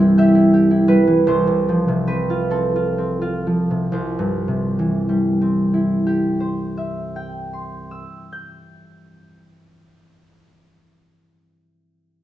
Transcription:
0, 0, Header, 1, 2, 480
1, 0, Start_track
1, 0, Key_signature, 0, "major"
1, 0, Tempo, 733496
1, 843, Time_signature, 6, 3, 24, 8
1, 843, Tempo, 797872
1, 1323, Tempo, 879765
1, 1803, Tempo, 956938
1, 2283, Tempo, 891530
1, 4683, Tempo, 857143
1, 6841, End_track
2, 0, Start_track
2, 0, Title_t, "Harp"
2, 0, Program_c, 0, 46
2, 0, Note_on_c, 0, 36, 55
2, 0, Note_on_c, 0, 43, 45
2, 0, Note_on_c, 0, 52, 44
2, 0, Note_on_c, 0, 55, 42
2, 0, Note_on_c, 0, 60, 37
2, 0, Note_on_c, 0, 64, 42
2, 0, Note_on_c, 0, 67, 41
2, 0, Note_on_c, 0, 79, 82
2, 108, Note_off_c, 0, 67, 0
2, 116, Note_on_c, 0, 67, 49
2, 121, Note_on_c, 0, 76, 68
2, 221, Note_off_c, 0, 64, 0
2, 228, Note_on_c, 0, 64, 46
2, 343, Note_off_c, 0, 67, 0
2, 350, Note_on_c, 0, 67, 45
2, 455, Note_off_c, 0, 64, 0
2, 463, Note_on_c, 0, 64, 49
2, 568, Note_off_c, 0, 55, 0
2, 574, Note_on_c, 0, 55, 47
2, 576, Note_on_c, 0, 71, 72
2, 694, Note_off_c, 0, 52, 0
2, 702, Note_on_c, 0, 52, 40
2, 824, Note_off_c, 0, 36, 0
2, 830, Note_on_c, 0, 36, 55
2, 835, Note_on_c, 0, 72, 63
2, 853, Note_off_c, 0, 55, 0
2, 854, Note_off_c, 0, 52, 0
2, 857, Note_off_c, 0, 64, 0
2, 857, Note_off_c, 0, 79, 0
2, 860, Note_off_c, 0, 43, 0
2, 861, Note_off_c, 0, 67, 0
2, 863, Note_off_c, 0, 76, 0
2, 953, Note_on_c, 0, 48, 41
2, 998, Note_off_c, 0, 71, 0
2, 1083, Note_on_c, 0, 53, 42
2, 1192, Note_off_c, 0, 48, 0
2, 1199, Note_on_c, 0, 48, 45
2, 1313, Note_off_c, 0, 60, 0
2, 1316, Note_on_c, 0, 71, 61
2, 1320, Note_on_c, 0, 60, 35
2, 1439, Note_on_c, 0, 65, 41
2, 1545, Note_off_c, 0, 60, 0
2, 1550, Note_on_c, 0, 60, 38
2, 1554, Note_on_c, 0, 69, 55
2, 1682, Note_off_c, 0, 65, 0
2, 1689, Note_on_c, 0, 65, 41
2, 1724, Note_off_c, 0, 71, 0
2, 1805, Note_off_c, 0, 60, 0
2, 1811, Note_on_c, 0, 60, 39
2, 1922, Note_off_c, 0, 65, 0
2, 1928, Note_on_c, 0, 65, 40
2, 2049, Note_off_c, 0, 53, 0
2, 2055, Note_on_c, 0, 53, 36
2, 2168, Note_off_c, 0, 48, 0
2, 2174, Note_on_c, 0, 48, 34
2, 2275, Note_off_c, 0, 36, 0
2, 2281, Note_off_c, 0, 72, 0
2, 2281, Note_on_c, 0, 36, 39
2, 2287, Note_on_c, 0, 72, 41
2, 2301, Note_off_c, 0, 69, 0
2, 2306, Note_off_c, 0, 48, 0
2, 2306, Note_off_c, 0, 65, 0
2, 2307, Note_off_c, 0, 53, 0
2, 2426, Note_on_c, 0, 43, 40
2, 2582, Note_on_c, 0, 48, 38
2, 2750, Note_on_c, 0, 52, 40
2, 2911, Note_on_c, 0, 55, 38
2, 3080, Note_off_c, 0, 60, 0
2, 3087, Note_on_c, 0, 60, 36
2, 3259, Note_on_c, 0, 64, 32
2, 3437, Note_on_c, 0, 67, 41
2, 3611, Note_off_c, 0, 72, 0
2, 3618, Note_on_c, 0, 72, 35
2, 3818, Note_on_c, 0, 76, 36
2, 4026, Note_on_c, 0, 79, 34
2, 4226, Note_on_c, 0, 84, 25
2, 4431, Note_on_c, 0, 88, 31
2, 4486, Note_off_c, 0, 36, 0
2, 4631, Note_off_c, 0, 43, 0
2, 4653, Note_on_c, 0, 91, 32
2, 4792, Note_off_c, 0, 48, 0
2, 4966, Note_off_c, 0, 52, 0
2, 5134, Note_off_c, 0, 55, 0
2, 5316, Note_off_c, 0, 60, 0
2, 5496, Note_off_c, 0, 64, 0
2, 5681, Note_off_c, 0, 67, 0
2, 5869, Note_off_c, 0, 72, 0
2, 5989, Note_off_c, 0, 76, 0
2, 5989, Note_off_c, 0, 88, 0
2, 5991, Note_off_c, 0, 91, 0
2, 5992, Note_off_c, 0, 84, 0
2, 5993, Note_off_c, 0, 79, 0
2, 6841, End_track
0, 0, End_of_file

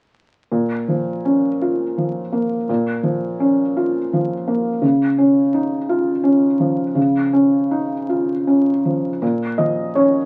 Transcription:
0, 0, Header, 1, 2, 480
1, 0, Start_track
1, 0, Key_signature, -5, "minor"
1, 0, Tempo, 729927
1, 335, Time_signature, 6, 3, 24, 8
1, 1296, Tempo, 712589
1, 4656, Tempo, 747198
1, 6773, End_track
2, 0, Start_track
2, 0, Title_t, "Felt piano"
2, 0, Program_c, 0, 0
2, 339, Note_on_c, 0, 46, 35
2, 441, Control_c, 0, 64, 127
2, 580, Note_on_c, 0, 53, 28
2, 823, Note_on_c, 0, 61, 32
2, 963, Note_off_c, 0, 53, 0
2, 1064, Note_on_c, 0, 65, 30
2, 1205, Note_off_c, 0, 61, 0
2, 1300, Note_on_c, 0, 53, 25
2, 1444, Note_off_c, 0, 65, 0
2, 1535, Note_on_c, 0, 58, 27
2, 1683, Note_off_c, 0, 53, 0
2, 1752, Note_off_c, 0, 46, 0
2, 1781, Note_on_c, 0, 46, 38
2, 1788, Control_c, 0, 64, 0
2, 1888, Control_c, 0, 64, 127
2, 1919, Note_off_c, 0, 58, 0
2, 2010, Note_on_c, 0, 53, 28
2, 2258, Note_on_c, 0, 61, 33
2, 2400, Note_off_c, 0, 53, 0
2, 2506, Note_on_c, 0, 65, 36
2, 2645, Note_off_c, 0, 61, 0
2, 2752, Note_on_c, 0, 53, 31
2, 2889, Note_off_c, 0, 65, 0
2, 2983, Note_on_c, 0, 58, 30
2, 3131, Note_off_c, 0, 53, 0
2, 3197, Note_off_c, 0, 46, 0
2, 3213, Note_on_c, 0, 49, 42
2, 3222, Note_off_c, 0, 58, 0
2, 3231, Control_c, 0, 64, 0
2, 3336, Control_c, 0, 64, 127
2, 3460, Note_on_c, 0, 61, 35
2, 3701, Note_on_c, 0, 63, 37
2, 3843, Note_off_c, 0, 61, 0
2, 3938, Note_on_c, 0, 65, 35
2, 4082, Note_off_c, 0, 63, 0
2, 4169, Note_on_c, 0, 61, 35
2, 4318, Note_off_c, 0, 65, 0
2, 4412, Note_on_c, 0, 53, 33
2, 4556, Note_off_c, 0, 61, 0
2, 4626, Note_off_c, 0, 49, 0
2, 4651, Note_on_c, 0, 49, 46
2, 4669, Control_c, 0, 64, 0
2, 4771, Control_c, 0, 64, 127
2, 4797, Note_off_c, 0, 53, 0
2, 4895, Note_on_c, 0, 61, 34
2, 5140, Note_on_c, 0, 63, 37
2, 5277, Note_off_c, 0, 61, 0
2, 5385, Note_on_c, 0, 65, 33
2, 5520, Note_off_c, 0, 63, 0
2, 5628, Note_on_c, 0, 61, 28
2, 5768, Note_off_c, 0, 65, 0
2, 5872, Note_on_c, 0, 53, 27
2, 6014, Note_off_c, 0, 61, 0
2, 6074, Note_off_c, 0, 49, 0
2, 6108, Note_off_c, 0, 53, 0
2, 6108, Note_on_c, 0, 46, 37
2, 6116, Control_c, 0, 64, 0
2, 6228, Control_c, 0, 64, 127
2, 6339, Note_on_c, 0, 75, 56
2, 6343, Note_on_c, 0, 53, 26
2, 6578, Note_off_c, 0, 75, 0
2, 6580, Note_on_c, 0, 73, 46
2, 6583, Note_on_c, 0, 61, 27
2, 6723, Note_off_c, 0, 53, 0
2, 6773, Note_off_c, 0, 46, 0
2, 6773, Note_off_c, 0, 61, 0
2, 6773, Note_off_c, 0, 73, 0
2, 6773, End_track
0, 0, End_of_file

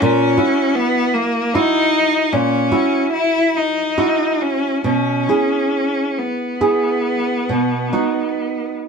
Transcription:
0, 0, Header, 1, 3, 480
1, 0, Start_track
1, 0, Tempo, 741656
1, 10, Time_signature, 12, 3, 24, 8
1, 490, Tempo, 791557
1, 1930, Tempo, 842697
1, 2410, Tempo, 879765
1, 4330, Tempo, 839161
1, 5125, End_track
2, 0, Start_track
2, 0, Title_t, "Nylon-string guitar"
2, 0, Program_c, 0, 24
2, 12, Note_on_c, 0, 46, 57
2, 238, Note_off_c, 0, 46, 0
2, 242, Note_on_c, 0, 66, 43
2, 243, Note_on_c, 0, 64, 37
2, 949, Note_off_c, 0, 64, 0
2, 949, Note_off_c, 0, 66, 0
2, 970, Note_on_c, 0, 66, 42
2, 972, Note_on_c, 0, 64, 34
2, 1416, Note_off_c, 0, 64, 0
2, 1416, Note_off_c, 0, 66, 0
2, 1442, Note_on_c, 0, 46, 44
2, 1674, Note_off_c, 0, 46, 0
2, 1679, Note_on_c, 0, 64, 36
2, 1679, Note_on_c, 0, 66, 40
2, 2385, Note_off_c, 0, 64, 0
2, 2385, Note_off_c, 0, 66, 0
2, 2411, Note_on_c, 0, 66, 34
2, 2413, Note_on_c, 0, 64, 31
2, 2866, Note_off_c, 0, 64, 0
2, 2866, Note_off_c, 0, 66, 0
2, 2884, Note_on_c, 0, 47, 34
2, 3122, Note_off_c, 0, 47, 0
2, 3127, Note_on_c, 0, 64, 27
2, 3130, Note_on_c, 0, 68, 33
2, 3829, Note_off_c, 0, 64, 0
2, 3830, Note_off_c, 0, 68, 0
2, 3847, Note_on_c, 0, 64, 26
2, 3849, Note_on_c, 0, 68, 31
2, 4307, Note_off_c, 0, 64, 0
2, 4307, Note_off_c, 0, 68, 0
2, 4330, Note_on_c, 0, 47, 33
2, 4567, Note_off_c, 0, 47, 0
2, 4578, Note_on_c, 0, 63, 28
2, 4581, Note_on_c, 0, 66, 29
2, 5125, Note_off_c, 0, 63, 0
2, 5125, Note_off_c, 0, 66, 0
2, 5125, End_track
3, 0, Start_track
3, 0, Title_t, "Cello"
3, 0, Program_c, 1, 42
3, 4, Note_on_c, 1, 61, 65
3, 487, Note_on_c, 1, 59, 69
3, 496, Note_off_c, 1, 61, 0
3, 722, Note_on_c, 1, 58, 59
3, 731, Note_off_c, 1, 59, 0
3, 965, Note_on_c, 1, 63, 65
3, 974, Note_off_c, 1, 58, 0
3, 1443, Note_on_c, 1, 61, 54
3, 1452, Note_off_c, 1, 63, 0
3, 1922, Note_off_c, 1, 61, 0
3, 1925, Note_on_c, 1, 64, 57
3, 2177, Note_on_c, 1, 63, 50
3, 2185, Note_off_c, 1, 64, 0
3, 2651, Note_on_c, 1, 61, 52
3, 2660, Note_off_c, 1, 63, 0
3, 2890, Note_off_c, 1, 61, 0
3, 2893, Note_on_c, 1, 61, 50
3, 3615, Note_on_c, 1, 59, 41
3, 3624, Note_off_c, 1, 61, 0
3, 5053, Note_off_c, 1, 59, 0
3, 5125, End_track
0, 0, End_of_file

